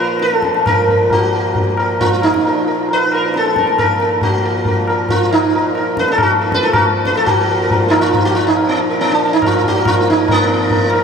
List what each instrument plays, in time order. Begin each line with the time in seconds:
Already playing: harmonium A#2 F3, sitar B4
0.00 sitar A#4
0.19 sitar A4, tabla te
0.31 tabla te
0.42 tabla ke
0.54 tabla te
0.66 sitar A#4, tabla na, tabla ge
0.88 sitar A#4, tabla ge
1.10 sitar F#4, tabla tin, tabla ge
1.35 sitar A#4
1.55 tabla tin, tabla ge
1.77 sitar A#4, tabla na
2.00 sitar F4, tabla tin, tabla ge
2.22 sitar D#4, tabla na
2.34 tabla ke
2.45 sitar D4 A#4, tabla tin
2.67 sitar A#4
2.89 tabla tin
2.93 sitar B4
3.12 sitar A#4, tabla na
3.34 sitar A4, tabla te
3.45 tabla te
3.56 sitar A#4, tabla ke
3.67 tabla te
3.79 sitar A#4, tabla na, tabla ge
4.00 sitar A#4, tabla te
4.21 sitar F#4, tabla tin, tabla ge
4.45 sitar A#4
4.65 sitar A#4, tabla tin, tabla ge
4.87 sitar A#4, tabla na
5.09 sitar F4, tabla tin, tabla ge
5.31 sitar D#4, tabla na
5.53 sitar A#4, tabla tin
5.75 sitar A#4, tabla na
5.97 sitar B4, tabla ke
6.08 sitar A4, tabla te
6.18 tabla na, tabla ge
6.23 sitar F#4
6.41 sitar A#4
6.52 sitar B4, tabla ke
6.63 sitar A4, tabla te
6.73 sitar F#4, tabla na, tabla ge
7.05 sitar B4, tabla ke
7.16 sitar A4, tabla te
7.26 harmonium A#2 F3, sitar F#4 A#4, tabla tin, tabla ge
7.41 sitar A#4
7.51 sitar A#4
7.63 sitar A#4
7.70 sitar A#4, tabla tin, tabla ge
7.88 sitar D#4 F4, tabla na
8.01 sitar F4
8.13 tabla tin, tabla ge
8.25 sitar F#4
8.35 sitar F4
8.47 sitar D#4
8.57 tabla tin
8.69 sitar B3
8.80 sitar A#4
8.90 sitar A#4
9.00 sitar B3, tabla tin
9.12 sitar D4
9.23 sitar A#4
9.33 sitar D#4
9.42 tabla na, tabla ge
9.46 sitar F4
9.55 sitar A#4
9.64 tabla ge
9.68 sitar F#4
9.77 sitar A#4
9.85 sitar F4, tabla na, tabla ge
10.08 sitar D#4, tabla te
10.20 sitar A#4
10.28 sitar A#3, tabla tin, tabla ge
10.41 sitar A#4
10.46 sitar B3
10.62 sitar A#4
10.70 sitar A#4, tabla tin, tabla ge
10.85 sitar A#4
10.91 tabla na
10.95 sitar A#4